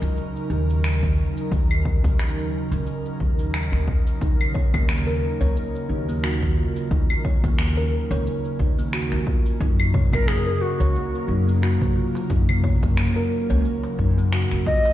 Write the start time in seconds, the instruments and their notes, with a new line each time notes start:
Already playing: analog synth pad C#3 F#3 D#4 A#4
0.02 upright bass C#2, shaker
0.17 shaker
0.36 shaker
0.50 upright bass D#2
0.70 shaker
0.84 finger snap, shaker
1.03 upright bass D#2, kick, shaker
1.37 shaker
1.51 upright bass D#2, kick, shaker
1.71 claves, shaker
1.85 kick
2.04 upright bass D#2, kick, shaker
2.19 finger snap, shaker
2.38 shaker
2.71 upright bass C#2, shaker
2.86 shaker
3.06 shaker
3.20 upright bass D#2, kick
3.39 shaker
3.54 finger snap, shaker
3.72 upright bass D#2, finger snap, shaker
3.88 kick
4.07 shaker
4.21 upright bass D#2, kalimba D#4, kick, shaker
4.41 claves, shaker
4.54 kalimba C#5, kick
4.74 upright bass D#2, kalimba A#3, kick, claves, shaker
4.89 finger snap, shaker
5.07 kalimba A#4, shaker
5.41 upright bass C#2, kalimba C#5, shaker
5.56 shaker
5.75 shaker
5.89 upright bass D#2, kalimba D#4
6.09 kalimba A#3, shaker
6.23 kalimba F#4, finger snap, shaker
6.42 upright bass D#2, kick, shaker
6.57 kalimba F4
6.76 shaker
6.91 upright bass D#2, kalimba D#4, kick, shaker
7.10 claves, shaker
7.25 kalimba C#5, kick
7.44 upright bass D#2, kalimba A#3, kick, shaker
7.59 finger snap, shaker
7.77 kalimba A#4, shaker
8.11 upright bass C#2, kalimba C#5, shaker
8.26 shaker
8.45 shaker
8.59 upright bass D#2, kalimba D#4, kick
8.79 kalimba A#3, shaker
8.93 kalimba F#4, finger snap, shaker
9.12 upright bass D#2, finger snap, shaker
9.27 kalimba F4, kick
9.46 shaker
9.60 upright bass F#2, kalimba D#4, kick, shaker
9.80 claves, shaker
9.94 kalimba C#5, kick, darbuka tek, darbuka dum
10.13 upright bass F#2, kalimba A#3, native american-style wooden flute A#4, kick, claves, shaker
10.28 analog synth pad A#3, native american-style wooden flute G#4, finger snap, shaker
10.47 kalimba A#4, shaker
10.61 native american-style wooden flute F#4
10.80 upright bass C#2, kalimba C#5, darbuka ka, shaker
10.90 analog synth pad F#3
10.96 shaker
11.15 shaker
11.28 upright bass F#2, kalimba D#4
11.48 kalimba A#3, shaker
11.62 kalimba F#4, finger snap, shaker
11.81 upright bass F#2, kick, darbuka ka, darbuka dum, shaker
11.96 kalimba F4
12.15 darbuka ka, darbuka tek, shaker
12.30 upright bass F#2, kalimba D#4, kick, shaker
12.49 darbuka dum, claves, shaker
12.64 kalimba C#5, kick, darbuka tek, darbuka dum
12.83 upright bass F#2, kalimba A#3, kick, shaker
12.97 finger snap, shaker
13.16 kalimba A#4, shaker
13.50 upright bass C#2, kalimba C#5, shaker
13.65 shaker
13.83 darbuka tek, shaker
13.99 upright bass F#2, kalimba D#4, kick
14.18 kalimba A#3, shaker
14.33 kalimba F#4, finger snap, shaker
14.52 upright bass F#2, finger snap, shaker
14.66 kalimba F4, native american-style wooden flute D#5, kick
14.85 darbuka ka, darbuka tek, shaker